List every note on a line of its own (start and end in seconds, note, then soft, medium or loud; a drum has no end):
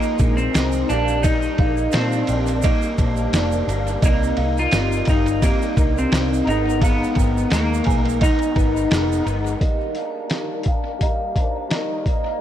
0.00 0.19 A#2 medium
0.00 0.19 F3 medium
0.00 0.19 G#3 medium
0.00 0.39 A#3 loud
0.00 0.17 D#4 loud
0.00 0.18 G#4 medium
0.00 0.18 D#5 loud
0.00 shaker soft
0.18 0.47 A#1 medium
0.18 0.53 F3 soft
0.18 0.55 G#3 medium
0.18 0.38 D4 medium
0.18 0.54 D#4 medium
0.18 0.38 A#4 medium
0.18 kick medium
0.18 ride soft
0.18 shaker medium
0.37 0.90 C4 medium
0.37 shaker soft
0.53 0.82 C2 loud
0.53 0.88 A#2 medium
0.53 0.89 F3 medium
0.53 0.90 G#3 medium
0.53 0.89 D#4 medium
0.53 0.72 C5 medium
0.53 snare loud
0.53 ride medium
0.53 shaker medium
0.72 shaker medium
0.89 1.45 A#1 loud
0.89 1.24 G3 soft
0.89 1.24 A#3 medium
0.89 1.24 D4 soft
0.89 1.08 G4 medium
0.89 1.08 D5 medium
0.89 ride medium
0.89 shaker soft
1.08 shaker medium
1.23 1.58 A#2 medium
1.23 1.59 D#3 medium
1.23 1.59 G3 medium
1.23 1.59 A#3 medium
1.23 1.95 D#4 medium
1.23 1.57 G4 medium
1.23 1.57 D#5 loud
1.23 kick loud
1.23 ride medium
1.23 shaker medium
1.42 shaker soft
1.58 1.86 A#1 loud
1.58 1.94 A#3 medium
1.58 2.10 G#4 medium
1.58 2.10 F5 medium
1.58 kick loud
1.58 ride medium
1.77 shaker soft
1.92 2.22 A#2 loud
1.92 2.28 D#3 medium
1.92 2.29 G3 medium
1.92 2.65 C4 medium
1.92 snare loud
1.92 ride medium
1.92 shaker medium
1.96 2.29 A#3 medium
1.96 2.27 D4 medium
2.12 shaker soft
2.27 2.72 A#1 medium
2.27 2.64 A#3 soft
2.27 2.63 D4 medium
2.27 2.47 G5 medium
2.27 ride medium
2.27 shaker soft
2.32 2.64 G3 soft
2.32 2.48 A#4 medium
2.47 ride soft
2.47 shaker soft
2.62 2.98 A#2 medium
2.62 2.99 D#3 medium
2.62 2.99 G3 medium
2.62 2.99 A#3 medium
2.62 2.97 G4 medium
2.62 2.97 D#5 loud
2.62 kick loud
2.62 ride medium
2.62 shaker medium
2.82 shaker soft
2.98 3.26 A#1 loud
2.98 3.33 G3 soft
2.98 3.34 A#3 medium
2.98 3.33 D4 medium
2.98 3.17 D#4 medium
2.98 3.16 C5 medium
2.98 kick medium
2.98 ride medium
2.98 shaker soft
3.17 shaker soft
3.33 3.61 F1 loud
3.33 3.68 D#3 medium
3.33 3.68 G3 medium
3.33 3.68 A#3 medium
3.33 3.66 D4 medium
3.33 3.85 G4 medium
3.33 3.84 D5 medium
3.33 snare loud
3.33 ride medium
3.33 shaker medium
3.52 shaker medium
3.67 3.96 G1 loud
3.67 4.02 G3 medium
3.67 4.03 A#3 medium
3.67 4.02 D4 medium
3.67 ride medium
3.67 shaker soft
3.87 shaker medium
4.02 4.31 C2 loud
4.02 4.37 C3 medium
4.02 4.38 G3 medium
4.02 4.37 A#3 medium
4.02 4.35 D#4 medium
4.02 4.36 G4 medium
4.02 4.36 D#5 loud
4.02 kick loud
4.02 ride medium
4.02 shaker medium
4.23 shaker soft
4.36 4.65 C2 medium
4.36 4.73 A#3 medium
4.36 4.72 D#4 medium
4.36 4.89 G#4 medium
4.36 4.88 F5 medium
4.36 ride medium
4.58 5.10 F4 loud
4.58 shaker soft
4.71 5.01 G1 medium
4.71 5.07 C3 medium
4.71 5.08 G3 medium
4.71 5.07 A#3 medium
4.71 5.05 D#4 medium
4.71 snare loud
4.71 ride medium
4.71 shaker medium
4.92 shaker medium
5.05 5.51 G1 medium
5.05 5.41 A#3 soft
5.05 5.42 D#4 medium
5.05 5.26 A#4 medium
5.05 5.25 G5 medium
5.05 kick loud
5.05 ride medium
5.05 shaker soft
5.10 5.40 G3 soft
5.26 ride soft
5.26 shaker soft
5.40 5.76 C3 medium
5.40 5.77 G3 medium
5.40 5.77 A#3 medium
5.40 5.74 D#4 medium
5.40 5.76 G4 medium
5.40 5.76 D#5 loud
5.40 kick loud
5.40 ride medium
5.40 shaker medium
5.62 shaker soft
5.76 6.05 C2 loud
5.76 6.10 G3 soft
5.76 6.11 A#3 medium
5.76 5.96 D4 medium
5.76 6.11 D#4 medium
5.76 5.96 A#4 medium
5.76 kick medium
5.76 ride medium
5.76 shaker soft
5.98 6.49 C4 loud
5.98 shaker soft
6.10 6.40 C2 loud
6.10 6.46 C3 medium
6.10 6.46 G3 medium
6.10 6.47 A#3 medium
6.10 6.45 D#4 medium
6.10 6.31 C5 medium
6.10 snare loud
6.10 ride medium
6.14 6.31 D#4 medium
6.14 shaker medium
6.34 shaker soft
6.45 7.03 G#1 loud
6.45 6.79 G#3 soft
6.45 6.80 B3 medium
6.45 6.80 D#4 soft
6.45 6.66 G#4 medium
6.45 6.81 A#4 medium
6.45 6.66 D#5 medium
6.45 ride soft
6.50 shaker soft
6.70 shaker medium
6.80 7.16 G#2 medium
6.80 7.16 D#3 medium
6.80 7.16 G#3 medium
6.80 7.16 B3 medium
6.80 7.14 D#4 medium
6.80 7.16 G#4 medium
6.80 7.13 A#4 medium
6.80 7.15 F5 loud
6.80 kick loud
6.80 ride medium
6.84 shaker medium
7.04 shaker soft
7.14 7.44 G#1 medium
7.14 7.48 G#3 soft
7.14 7.52 B3 medium
7.14 7.50 D#4 soft
7.14 7.50 A#4 medium
7.14 7.68 G5 medium
7.14 kick loud
7.14 ride medium
7.18 7.68 A#4 medium
7.18 shaker medium
7.37 shaker soft
7.49 7.80 D#2 medium
7.49 7.85 G#3 medium
7.49 8.24 A#3 medium
7.49 7.85 D#4 medium
7.49 7.84 A#4 medium
7.49 snare loud
7.49 ride medium
7.49 shaker medium
7.74 shaker soft
7.84 8.30 B1 medium
7.84 8.21 D#4 medium
7.84 8.21 A#4 soft
7.84 8.05 B4 medium
7.84 8.05 G#5 medium
7.84 kick loud
7.84 ride medium
7.89 8.20 G#3 soft
7.89 shaker soft
8.05 ride soft
8.05 shaker soft
8.20 8.56 G#2 medium
8.20 8.56 D#3 medium
8.20 8.56 G#3 medium
8.20 8.56 B3 medium
8.20 8.55 D#4 medium
8.20 8.55 G#4 medium
8.20 8.53 A#4 medium
8.20 8.55 D#5 loud
8.20 kick loud
8.20 ride medium
8.20 shaker medium
8.39 ride soft
8.39 shaker soft
8.54 8.84 G#1 medium
8.54 8.88 G#3 soft
8.54 8.89 B3 medium
8.54 8.91 D#4 medium
8.54 8.74 D#4 medium
8.54 8.90 A#4 medium
8.54 8.74 B4 medium
8.54 kick medium
8.54 ride medium
8.59 shaker soft
8.77 shaker soft
8.90 9.20 F1 loud
8.90 9.25 G#3 medium
8.90 9.25 B3 medium
8.90 9.25 D#4 medium
8.90 9.42 G#4 medium
8.90 9.23 A#4 medium
8.90 9.42 D#5 medium
8.90 snare loud
8.90 ride medium
8.90 shaker medium
9.12 shaker medium
9.24 9.54 G1 medium
9.24 9.60 G#3 medium
9.24 9.61 B3 medium
9.24 9.61 D#4 medium
9.24 9.60 A#4 medium
9.24 ride soft
9.24 shaker soft
9.46 shaker soft
9.60 9.95 D#3 medium
9.60 9.95 G3 medium
9.60 9.96 A#3 medium
9.60 9.95 G4 medium
9.60 9.93 A#4 medium
9.60 9.94 D#5 medium
9.60 kick loud
9.60 closed hi-hat medium
9.95 10.30 A#3 soft
9.95 10.31 D4 soft
9.95 10.47 G#4 soft
9.95 10.30 A#4 soft
9.95 10.47 F5 medium
9.95 closed hi-hat medium
10.30 10.65 D#3 medium
10.30 10.66 G3 medium
10.30 10.66 A#3 medium
10.30 10.66 D4 medium
10.30 10.64 A#4 medium
10.30 snare medium
10.30 closed hi-hat medium
10.63 11.01 D4 soft
10.63 11.00 A#4 soft
10.63 kick medium
10.63 closed hi-hat medium
10.68 10.99 A#3 soft
10.68 10.85 A#4 medium
10.68 11.67 F5 medium
10.68 10.85 G5 medium
10.98 11.34 G3 medium
10.98 11.35 A#3 medium
10.98 11.32 A#4 medium
10.98 kick medium
10.98 closed hi-hat medium
11.03 11.35 G4 medium
11.03 11.35 D#5 medium
11.34 11.68 A#3 soft
11.34 11.71 D4 soft
11.34 11.69 A#4 soft
11.34 11.54 C5 medium
11.34 kick medium
11.34 closed hi-hat medium
11.38 11.55 D#4 medium
11.68 12.04 D#3 medium
11.68 12.04 G3 medium
11.68 12.05 A#3 medium
11.68 12.03 A#4 medium
11.68 11.90 D5 medium
11.68 12.37 D#5 medium
11.68 snare medium
11.68 closed hi-hat medium
11.73 11.90 G4 soft
12.04 12.40 A#3 soft
12.04 12.39 A#4 soft
12.04 12.24 D#5 medium
12.04 kick medium
12.04 closed hi-hat medium
12.08 12.25 G4 medium